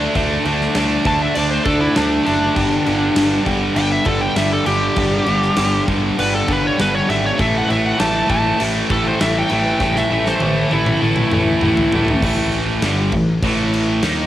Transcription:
Already playing: overdriven electric guitar D3 A3 D4
0.15 picked electric bass D2, overdriven electric guitar D3 A3 D4, kick, crash
0.45 picked electric bass D2, overdriven electric guitar D3 A3 D4, crash
0.61 snare
0.75 picked electric bass D2, overdriven electric guitar D3 A3 D4, snare, crash
1.05 picked electric bass D2, overdriven electric guitar D3 A3 D4, lead electric guitar A5, kick, crash
1.22 lead electric guitar E5
1.35 picked electric bass D2, overdriven electric guitar D3 A3 D4, lead electric guitar D5, crash
1.51 lead electric guitar C5
1.65 picked electric bass D2, overdriven electric guitar D3 A3 D4, lead electric guitar A4, kick, crash
1.81 lead electric guitar E4
1.95 picked electric bass D2, overdriven electric guitar D3 A3 D4, lead electric guitar D4, snare, crash
2.25 picked electric bass F#1, overdriven electric guitar D3 A3 D4, lead electric guitar D4, crash
2.55 picked electric bass G1, overdriven electric guitar G2 D3 G3, kick, crash
2.86 picked electric bass G1, overdriven electric guitar G2 D3 G3, crash
3.16 picked electric bass G1, overdriven electric guitar G2 D3 G3, snare, crash
3.46 picked electric bass G1, overdriven electric guitar G2 D3 G3, kick, crash
3.75 picked electric bass G1, overdriven electric guitar G2 D3 G3, lead electric guitar G5, crash
3.92 lead electric guitar E5
4.05 picked electric bass G1, overdriven electric guitar G2 D3 G3, lead electric guitar A4, kick, crash
4.21 lead electric guitar G5
4.36 picked electric bass G1, overdriven electric guitar G2 D3 G3, lead electric guitar E5, snare, crash
4.53 lead electric guitar A4
4.66 picked electric bass G1, overdriven electric guitar G2 D3 G3, lead electric guitar G4, crash
4.96 picked electric bass G1, overdriven electric guitar G2 D3 G3, kick, crash
5.26 picked electric bass G1, overdriven electric guitar G2 D3 G3, crash
5.42 snare
5.56 picked electric bass G1, overdriven electric guitar G2 D3 G3, snare, crash
5.88 picked electric bass G1, overdriven electric guitar G2 D3 G3, kick, crash
6.17 picked electric bass G1, overdriven electric guitar G2 D3 G3, lead electric guitar B4, crash
6.35 lead electric guitar A4
6.47 picked electric bass G1, overdriven electric guitar G2 D3 G3, kick, crash
6.52 lead electric guitar B4
6.67 lead electric guitar C#5
6.78 picked electric bass G1, overdriven electric guitar G2 D3 G3, lead electric guitar B4, snare, crash
6.95 lead electric guitar C#5
7.09 picked electric bass G#1, overdriven electric guitar G2 D3 G3, lead electric guitar E5, crash
7.26 lead electric guitar C#5
7.37 picked electric bass A1, overdriven electric guitar A2 E3 A3, lead electric guitar E5, kick, crash
7.58 lead electric guitar F#5
7.69 picked electric bass A1, overdriven electric guitar A2 E3 A3, lead electric guitar E5, crash
7.86 lead electric guitar F#5
7.97 picked electric bass A1, overdriven electric guitar A2 E3 A3, lead electric guitar A5, snare, crash
8.27 picked electric bass A1, overdriven electric guitar A2 E3 A3, lead electric guitar A5, kick, crash
8.58 picked electric bass A1, overdriven electric guitar A2 E3 A3, crash
8.89 picked electric bass A1, overdriven electric guitar A2 E3 A3, lead electric guitar A4, kick, crash
9.07 lead electric guitar C5
9.19 picked electric bass A1, overdriven electric guitar A2 E3 A3, lead electric guitar E5, snare, crash
9.38 lead electric guitar G5
9.49 picked electric bass A1, overdriven electric guitar A2 E3 A3, crash
9.80 picked electric bass A1, overdriven electric guitar A2 E3 A3, kick, snare
9.96 lead electric guitar E5, snare
10.10 picked electric bass A1, overdriven electric guitar A2 E3 A3
10.26 lead electric guitar C5, snare
10.40 picked electric bass A1, overdriven electric guitar A2 E3 A3, high tom
10.70 picked electric bass A1, overdriven electric guitar A2 E3 A3, lead electric guitar E4, high tom
10.86 mid tom
11.01 picked electric bass A1, overdriven electric guitar A2 E3 A3
11.16 mid tom
11.31 picked electric bass A1, overdriven electric guitar A2 E3 A3, mid tom
11.61 picked electric bass A1, overdriven electric guitar A2 E3 A3, mid tom
11.77 floor tom
11.92 picked electric bass A1, overdriven electric guitar A2 E3 A3, floor tom
12.08 floor tom
12.22 picked electric bass A1, overdriven electric guitar A2 E3 A3, kick, crash
12.52 crash
12.82 picked electric bass G1, overdriven electric guitar G2 D3 G3, snare, crash
13.12 picked electric bass A1, overdriven electric guitar A2 E3, kick, crash
13.42 picked electric bass A1, overdriven electric guitar A2 E3 A3, kick, crash
13.74 crash
14.03 picked electric bass D#2, overdriven electric guitar D#3 A#3 D#4, snare, crash

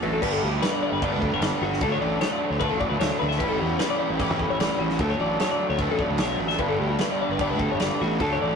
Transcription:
Already playing: clean electric guitar A2 D3 A3 C#4 A4
0.02 fingered electric bass A1, clean electric guitar F#2 B4, overdriven electric guitar F#3 A3 D4 F#4, ride
0.13 clean electric guitar A4
0.20 fingered electric bass G1, overdriven electric guitar G2 D3 G3 B3 D4, clean electric guitar B4, kick, crash
0.32 clean electric guitar A4
0.43 fingered electric bass D2, clean electric guitar G4
0.52 clean electric guitar F#4
0.62 clean electric guitar B4, snare, crash
0.73 clean electric guitar D5
0.83 clean electric guitar D5
0.92 fingered electric bass G1, clean electric guitar B4
1.01 overdriven electric guitar G2 D3 G3 B3 D4, clean electric guitar D5, kick, crash
1.12 fingered electric bass D2, clean electric guitar B4
1.22 clean electric guitar A4, kick
1.32 fingered electric bass G1, clean electric guitar C#5
1.41 fingered electric bass G1, clean electric guitar D5, snare, crash
1.61 fingered electric bass G1, clean electric guitar F#4
1.73 snare
1.81 fingered electric bass D2, overdriven electric guitar D3 F#3 A3, clean electric guitar A4, kick, crash
1.85 overdriven electric guitar D4
1.92 clean electric guitar C#5
2.01 fingered electric bass A1, clean electric guitar D5
2.21 clean electric guitar C#5, snare, crash
2.30 clean electric guitar D5
2.50 fingered electric bass D2, clean electric guitar C#5
2.60 overdriven electric guitar D3 F#3 A3 D4, clean electric guitar B4, kick, crash
2.70 fingered electric bass A1, clean electric guitar A4
2.80 clean electric guitar D5, kick
2.89 fingered electric bass D2, clean electric guitar B4
3.00 fingered electric bass D2, clean electric guitar C#5, snare, crash
3.19 fingered electric bass D2, clean electric guitar B4
3.29 clean electric guitar E5, snare
3.38 fingered electric bass A1, overdriven electric guitar A2 E3 G3, clean electric guitar B4, kick, crash
3.42 overdriven electric guitar C#4 E4
3.49 clean electric guitar A4
3.59 fingered electric bass E2, clean electric guitar G4
3.69 clean electric guitar F#4
3.79 clean electric guitar B4, snare, crash
3.90 clean electric guitar D5
3.99 clean electric guitar D5
4.09 fingered electric bass A1, clean electric guitar B4
4.18 overdriven electric guitar A2 E3 G3 C#4 E4, clean electric guitar D5, kick, crash
4.31 fingered electric bass E2, clean electric guitar B4
4.39 clean electric guitar A4, kick
4.50 fingered electric bass A1, clean electric guitar C#5
4.59 fingered electric bass A1, clean electric guitar D5, snare, crash
4.79 fingered electric bass A1, clean electric guitar F#4
4.90 snare
4.99 fingered electric bass D2, overdriven electric guitar D3 F#3 A3 D4, clean electric guitar A4, kick, crash
5.10 clean electric guitar C#5
5.19 fingered electric bass A1, clean electric guitar D5
5.40 clean electric guitar C#5, snare, crash
5.51 clean electric guitar D5
5.69 fingered electric bass D2, clean electric guitar C#5
5.78 overdriven electric guitar D3 F#3 A3 D4, clean electric guitar B4, kick, crash
5.89 fingered electric bass A1, clean electric guitar A4
5.99 clean electric guitar D5, kick
6.09 fingered electric bass D2, clean electric guitar B4
6.18 fingered electric bass B1, clean electric guitar C#5, snare, crash
6.39 fingered electric bass A1, clean electric guitar B4
6.48 clean electric guitar E5, snare
6.58 fingered electric bass G1, overdriven electric guitar G2 D3 G3 B3 D4, clean electric guitar B4, kick, crash
6.69 clean electric guitar A4
6.80 fingered electric bass D2, clean electric guitar G4
6.90 clean electric guitar F#4
6.98 clean electric guitar B4, snare, crash
7.11 clean electric guitar D5
7.22 clean electric guitar D5
7.29 fingered electric bass G1, clean electric guitar B4
7.39 overdriven electric guitar G2 D3 G3 B3 D4, clean electric guitar D5, kick, crash
7.50 fingered electric bass D2, clean electric guitar B4
7.59 clean electric guitar A4, kick
7.71 fingered electric bass G1, clean electric guitar C#5
7.80 fingered electric bass G1, clean electric guitar D5, snare, crash
8.01 fingered electric bass A1, clean electric guitar F#4
8.19 fingered electric bass D2, overdriven electric guitar D3 F#3 A3 D4, clean electric guitar A4, kick, crash
8.33 clean electric guitar C#5
8.42 fingered electric bass A1, clean electric guitar D5

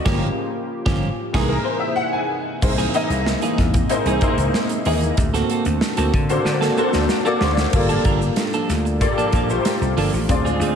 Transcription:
Already playing: grand piano D#5
0.05 slap bass G1, grand piano C#3 F3 A#3, clean electric guitar F3 A#3 C#4 G4, analog synth pad A#3 F4 G4, kick, snare, crash
0.86 slap bass G1, clean electric guitar F3 A#3 C#4 G4, kick, snare
1.33 slap bass C2, analog synth pad C3 A#3 D#4 E4 G#4, grand piano E3 G#3 A#3 G#4, clean electric guitar E3 A#3 D#4 G#4, kick, snare, crash
1.48 grand piano A#4
1.64 grand piano C5
1.80 grand piano E5
1.96 grand piano F#5
2.12 grand piano G#5
2.62 slap bass C2, analog synth pad C3 G#3 A#3 C4 D#5, grand piano A#3 D#4 E4 G#4 C5, muted clean electric guitar stroke, kick, crash, shaker
2.78 clean electric guitar E3 A#3 D#4 G#4, snare, closed hi-hat, shaker
2.94 clean electric guitar E3 A#3 D#4 A#4, grand piano A#3 D#4 E4 G#4 D#5, closed hi-hat, shaker
3.10 slap bass C2, muted clean electric guitar stroke, closed hi-hat, shaker
3.26 muted clean electric guitar stroke, snare, shaker
3.42 clean electric guitar E3 A#3 D#4 G#4, closed hi-hat, shaker
3.58 slap bass E2, muted clean electric guitar stroke, kick, snare, closed hi-hat
3.74 muted clean electric guitar stroke, kick, closed hi-hat, shaker
3.89 grand piano A#3 D#4 E4 G#4 C5, muted clean electric guitar stroke, closed hi-hat, shaker
4.05 slap bass C2, clean electric guitar E3 A#3 D#4 G#4, closed hi-hat, shaker
4.21 clean electric guitar E3 A#3 D#4 G#4, grand piano A#3 D#4 E4 G#4 C5, kick, closed hi-hat, shaker
4.37 slap bass C#2, muted clean electric guitar stroke, closed hi-hat, shaker
4.54 snare, shaker
4.69 muted clean electric guitar stroke, closed hi-hat, shaker
4.85 slap bass D#2, clean electric guitar E3 A#3 D#4 G#4, grand piano A#3 D#4 E4 G#4 D#5, open hi-hat
5.01 muted clean electric guitar stroke, closed hi-hat, shaker
5.17 slap bass D2, analog synth pad D3 A#3 C4 F#4 A4, muted clean electric guitar stroke, kick, closed hi-hat, shaker
5.34 clean electric guitar A#3 C4 F#4 A4, snare, closed hi-hat, shaker
5.50 clean electric guitar A#3 C4 F#4 A4, closed hi-hat, shaker
5.65 slap bass D2, muted clean electric guitar stroke, closed hi-hat, shaker
5.81 muted clean electric guitar stroke, snare, shaker
5.97 slap bass D2, clean electric guitar A#3 C4 F#4 A4, closed hi-hat, shaker
6.14 slap bass D3, muted clean electric guitar stroke, kick, closed hi-hat
6.29 grand piano A#3 D4 F#4 A4 C5, muted clean electric guitar stroke, closed hi-hat, shaker
6.45 slap bass D3, muted clean electric guitar stroke, snare, shaker
6.61 clean electric guitar A#3 C4 F#4 A4, snare, shaker
6.77 grand piano A#3 D4 F#4 A4 C5, clean electric guitar A#3 C4 F#4 A4, shaker
6.93 slap bass D2, muted clean electric guitar stroke, snare, shaker
7.09 muted clean electric guitar stroke, snare, shaker
7.25 grand piano A#3 D4 F#4 A4 D5, clean electric guitar A#3 C4 F#4 A4, shaker
7.41 slap bass D2, grand piano A#3 D4 F#4 A4 C5, muted clean electric guitar stroke, snare
7.57 muted clean electric guitar stroke, snare, shaker
7.73 slap bass G1, analog synth pad G3 A#3 D4 F4 A4, grand piano A#3 F4 G4 A4 D5, muted clean electric guitar stroke, kick, crash, shaker
7.89 clean electric guitar F3 A#3 D4 A4, shaker
8.05 slap bass G1, clean electric guitar F3 A#3 D4 A#4, kick, closed hi-hat, shaker
8.22 muted clean electric guitar stroke, shaker
8.36 muted clean electric guitar stroke, snare, closed hi-hat, shaker
8.53 clean electric guitar F3 A#3 D4 A4, shaker
8.69 slap bass D2, muted clean electric guitar stroke, snare, closed hi-hat, shaker
8.85 muted clean electric guitar stroke, shaker
9.01 grand piano A#3 F4 G4 A4 D5, muted clean electric guitar stroke, kick, closed hi-hat, shaker
9.18 clean electric guitar F3 A#3 D4 A4, shaker
9.33 slap bass A#1, clean electric guitar F3 A#3 D4 A4, kick, closed hi-hat, shaker
9.49 grand piano A3 F4 G4 A4 C5, muted clean electric guitar stroke, shaker
9.56 grand piano A#3
9.65 snare, closed hi-hat, shaker
9.81 slap bass C2, muted clean electric guitar stroke, shaker
9.97 slap bass G1, clean electric guitar F3 A#3 D4 A4, open hi-hat
10.13 slap bass A1, muted clean electric guitar stroke, shaker
10.29 slap bass D2, grand piano C4 D4 F4 G#4 D5, analog synth pad C4 D4, muted clean electric guitar stroke, kick, closed hi-hat, shaker
10.45 clean electric guitar G#3 C4 F4 G#4, shaker
10.59 slap bass D2, clean electric guitar G#3 C4 F4 G#4, closed hi-hat, shaker

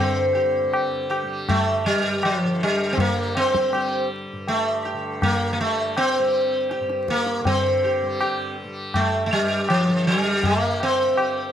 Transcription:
Already playing: tanpura G2 G3
0.00 tanpura D3, sitar C4
0.35 sitar G4
0.62 tanpura G3
0.73 tabla na
1.10 sitar G4, tabla na
1.23 tanpura G3
1.49 sitar A3, tabla na, tabla ge
1.84 tanpura G2, sitar G3
2.23 sitar F3, tabla na
2.44 tanpura D3
2.63 sitar G3
2.93 sitar C4
2.98 sitar A#3, tabla tin, tabla ge
3.08 tanpura G3
3.35 sitar C4, tabla na
3.55 tabla ke
3.71 tanpura G3, sitar G4, tabla na
4.33 tanpura G2
4.48 sitar A3, tabla tin
4.85 sitar G4
4.93 tanpura D3
5.22 sitar A#3, tabla na, tabla ge
5.53 tanpura G3, sitar A#3
5.61 sitar A3
5.97 sitar C4, tabla na
6.18 tanpura G3
6.71 sitar G4, tabla te
6.80 tanpura G2
6.90 tabla te
7.08 sitar A#3, tabla ke
7.26 tabla te
7.40 tanpura D3
7.45 sitar C4, tabla tin, tabla ge
7.84 sitar G4
8.02 tanpura G3
8.21 sitar G4, tabla na
8.64 tanpura G3
8.94 sitar A3, tabla na, tabla ge
9.26 tanpura G2, sitar A3
9.33 sitar G3
9.69 sitar F3, tabla na
9.87 tanpura D3
10.07 sitar G3
10.43 sitar A#3, tabla tin, tabla ge
10.49 tanpura G3
10.80 sitar C4, tabla na
11.08 tanpura G3
11.17 sitar G4, tabla na

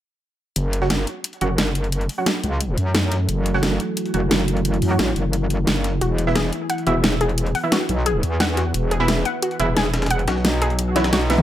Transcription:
0.56 wobble bass F#1, ambient pad E4 F#4 A4, closed hi-hat
0.73 closed hi-hat
0.82 synth stab F#3 C#4 F#4, snare
0.90 snare, closed hi-hat
0.99 snare
1.07 closed hi-hat
1.24 closed hi-hat
1.33 closed hi-hat
1.41 wobble bass F#1, synth stab F#3 C#4 F#4, closed hi-hat
1.58 wobble bass F#1, snare, closed hi-hat
1.75 closed hi-hat
1.84 closed hi-hat
1.92 closed hi-hat
2.01 closed hi-hat
2.09 closed hi-hat, open hi-hat
2.18 synth stab F#3 C#4 F#4
2.26 snare, closed hi-hat
2.43 wobble bass C#2, closed hi-hat
2.61 closed hi-hat
2.78 wobble bass F#2, closed hi-hat
2.95 snare, closed hi-hat
3.12 snare, closed hi-hat
3.29 wobble bass F#1, closed hi-hat
3.46 closed hi-hat
3.54 synth stab F#3 C#4 F#4, snare
3.63 snare, closed hi-hat
3.71 snare
3.80 closed hi-hat
3.97 closed hi-hat
4.06 closed hi-hat
4.14 wobble bass F#1, synth stab F#3 C#4 F#4, closed hi-hat
4.31 wobble bass F#1, snare, closed hi-hat
4.48 closed hi-hat
4.57 closed hi-hat
4.65 closed hi-hat
4.74 closed hi-hat
4.82 wobble bass F#2, closed hi-hat, open hi-hat
4.91 synth stab F#3 C#4 F#4
4.99 wobble bass A1, snare, closed hi-hat
5.16 wobble bass F#1, closed hi-hat
5.33 closed hi-hat
5.50 closed hi-hat
5.67 wobble bass F#1, snare, closed hi-hat
5.84 snare, closed hi-hat
6.01 wobble bass E1, synth arpeggio sound F#4, ambient pad B4 F#5, closed hi-hat
6.18 closed hi-hat
6.27 synth stab E3 B3 E4, snare
6.36 synth arpeggio sound G#4, snare, closed hi-hat
6.44 snare
6.53 closed hi-hat
6.70 synth arpeggio sound F#5, closed hi-hat
6.78 closed hi-hat
6.87 wobble bass E1, synth stab E3 B3 E4, synth arpeggio sound F#4, closed hi-hat
7.04 wobble bass E1, snare, closed hi-hat
7.21 synth arpeggio sound G#4, closed hi-hat
7.29 closed hi-hat
7.38 closed hi-hat
7.46 closed hi-hat
7.55 synth arpeggio sound F#5, closed hi-hat, open hi-hat
7.63 synth stab E3 B3 E4
7.72 synth arpeggio sound F#4, snare, closed hi-hat
7.89 wobble bass B1, closed hi-hat
8.06 synth arpeggio sound G#4, closed hi-hat
8.23 wobble bass E2, closed hi-hat
8.40 synth arpeggio sound F#5, snare, closed hi-hat
8.57 synth arpeggio sound F#4, snare, closed hi-hat
8.74 wobble bass E1, closed hi-hat
8.91 synth arpeggio sound G#4, closed hi-hat
9.00 synth stab E3 B3 E4, snare
9.08 snare, closed hi-hat
9.17 snare
9.25 synth arpeggio sound F#5, closed hi-hat
9.42 synth arpeggio sound F#4, closed hi-hat
9.51 closed hi-hat
9.59 wobble bass E1, synth stab E3 B3 E4, closed hi-hat
9.77 wobble bass E1, synth arpeggio sound G#4, snare, closed hi-hat
9.94 snare, closed hi-hat
10.02 snare, closed hi-hat
10.06 snare, closed hi-hat
10.11 synth arpeggio sound F#5, closed hi-hat
10.19 closed hi-hat
10.28 wobble bass B1, synth arpeggio sound F#4, snare, closed hi-hat
10.36 snare
10.45 snare, closed hi-hat
10.62 synth arpeggio sound G#4, closed hi-hat
10.70 closed hi-hat
10.79 closed hi-hat, swell
10.96 synth stab E3 B3 E4, synth arpeggio sound C#5, snare, closed hi-hat
11.04 snare, closed hi-hat
11.13 synth arpeggio sound F#4, snare, closed hi-hat
11.30 synth stab E3 B3 E4, snare, closed hi-hat
11.38 mid tom

